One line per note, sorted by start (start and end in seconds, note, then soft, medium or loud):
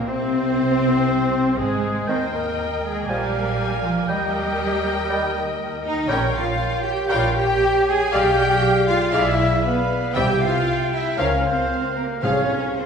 0.07 1.55 C2 medium
0.07 1.59 C3 medium
0.07 1.58 C4 medium
0.07 1.61 C4 medium
0.07 1.55 C4 medium
0.07 1.59 C4 medium
0.07 1.58 C4 medium
0.07 1.56 C4 medium
0.07 1.58 C5 medium
0.07 1.55 C5 medium
1.58 2.09 G#1 medium
1.58 2.08 G#2 medium
1.58 2.08 G#3 medium
1.58 2.07 G#3 medium
1.58 2.08 G#3 medium
1.58 2.08 G#4 medium
1.58 2.06 G#4 medium
1.58 2.10 G#4 medium
2.07 3.05 D#2 medium
2.07 2.26 D#3 medium
2.07 2.15 C4 medium
2.07 3.05 A#4 medium
2.07 3.06 A#4 medium
2.07 2.34 C5 medium
2.07 2.33 C5 medium
2.07 3.05 D#5 medium
2.07 2.26 D#5 medium
2.07 3.06 D#5 medium
2.07 2.25 G5 medium
2.07 3.06 G5 medium
2.07 3.11 G5 medium
2.32 2.82 A#3 medium
2.32 2.84 A#4 medium
2.32 2.86 A#4 medium
2.83 3.08 G#3 medium
2.83 3.09 G#4 medium
2.83 3.12 G#4 medium
3.07 4.09 A#1 medium
3.07 3.27 F3 medium
3.07 3.84 G3 medium
3.07 3.85 G4 medium
3.07 3.84 G4 medium
3.07 4.07 A#4 medium
3.07 4.08 A#4 medium
3.07 3.27 D5 medium
3.07 4.10 D5 medium
3.07 4.11 F5 medium
3.07 3.25 G#5 medium
3.07 4.10 G#5 medium
3.83 4.08 F3 medium
3.83 3.92 F4 medium
3.83 3.91 F4 medium
4.08 6.05 D#2 medium
4.08 5.59 G3 medium
4.08 4.27 G3 medium
4.08 5.57 G4 medium
4.08 6.05 A#4 medium
4.08 5.91 A#4 medium
4.08 6.05 D#5 medium
4.08 5.93 D#5 medium
4.08 5.91 D#5 medium
4.08 4.28 D#5 medium
4.08 4.26 G5 medium
4.08 6.07 G5 medium
5.08 5.27 G3 medium
5.08 5.26 D#5 medium
5.08 5.26 G5 medium
5.83 6.07 D#4 loud
5.83 6.07 D#5 medium
5.83 6.10 D#5 medium
6.08 6.50 A#1 medium
6.08 6.26 G3 medium
6.08 6.17 C#4 loud
6.08 8.08 A#4 medium
6.08 6.32 A#4 medium
6.08 6.25 C#5 medium
6.08 8.08 C#5 medium
6.08 6.32 C#5 medium
6.08 6.35 C#5 medium
6.08 6.32 G5 medium
6.08 6.26 G5 medium
6.08 8.09 G5 medium
6.33 6.83 F4 loud
6.33 6.83 F5 medium
6.33 6.84 F5 medium
6.84 7.11 G4 medium
6.84 6.90 G5 medium
6.84 7.10 G5 medium
7.08 7.54 A#1 medium
7.08 7.29 G3 medium
7.08 7.36 F4 loud
7.08 7.34 A#4 medium
7.08 7.34 C#5 medium
7.08 7.28 C#5 medium
7.08 7.36 F5 medium
7.08 7.27 G5 medium
7.08 7.35 G5 medium
7.34 7.86 G4 loud
7.34 7.87 G5 loud
7.87 8.13 G#4 loud
7.87 8.13 G#5 loud
8.11 8.54 B1 loud
8.11 8.31 G#3 medium
8.11 8.88 G4 loud
8.11 9.61 G#4 loud
8.11 8.36 G#4 medium
8.11 9.64 D5 medium
8.11 8.36 D5 medium
8.11 8.31 D5 medium
8.11 8.36 F5 medium
8.11 9.35 F5 medium
8.11 8.31 F5 medium
8.11 8.88 G5 loud
8.11 8.89 G5 loud
8.88 9.13 F4 loud
8.88 9.13 F5 loud
8.88 8.95 F5 medium
9.13 9.56 B1 medium
9.13 9.32 G#3 medium
9.13 9.64 E4 loud
9.13 9.37 G#4 medium
9.13 9.37 D5 medium
9.13 9.32 D5 medium
9.13 9.64 E5 loud
9.13 9.65 E5 loud
9.13 9.37 F5 medium
9.13 9.32 F5 medium
9.64 10.15 B3 loud
9.64 10.15 G#4 medium
9.64 10.16 B4 medium
9.64 10.18 B4 medium
9.64 10.15 D5 medium
9.64 10.19 F5 medium
10.14 10.58 C2 medium
10.14 10.89 C3 medium
10.14 10.34 G3 medium
10.14 10.39 G4 medium
10.14 11.18 G4 medium
10.14 10.42 G4 loud
10.14 10.34 C5 medium
10.14 11.18 E5 medium
10.14 10.33 E5 medium
10.14 10.39 E5 medium
10.14 10.39 G5 medium
10.14 10.41 G5 loud
10.14 10.44 G5 loud
10.14 11.19 G5 medium
10.42 10.92 F4 loud
10.42 10.92 F5 loud
10.42 10.95 F5 medium
10.92 11.18 E4 medium
10.92 11.18 E5 medium
10.92 11.19 E5 loud
11.17 11.62 C#2 medium
11.17 11.36 F3 medium
11.17 11.44 C#4 medium
11.17 12.21 A#4 medium
11.17 11.42 A#4 medium
11.17 11.36 A#4 medium
11.17 11.44 C#5 medium
11.17 11.36 F5 medium
11.17 11.42 F5 medium
11.17 12.21 F5 medium
11.17 12.22 F5 medium
11.43 11.97 C4 medium
11.43 11.95 C5 medium
11.43 11.98 C5 medium
11.96 12.23 A#3 medium
11.96 12.04 A#4 medium
11.96 12.24 A#4 medium
12.21 12.67 C2 medium
12.21 12.86 C3 medium
12.21 12.42 F3 medium
12.21 12.75 C#4 medium
12.21 12.47 G#4 medium
12.21 12.75 G#4 medium
12.21 12.42 G#4 medium
12.21 12.74 C#5 medium
12.21 12.57 C#5 medium
12.21 12.48 F5 medium
12.21 12.75 F5 medium
12.21 12.42 F5 medium
12.21 12.48 F5 medium
12.21 12.76 F5 medium
12.76 12.86 C4 medium
12.76 12.86 G#4 medium
12.76 12.86 C5 medium
12.76 12.86 F5 medium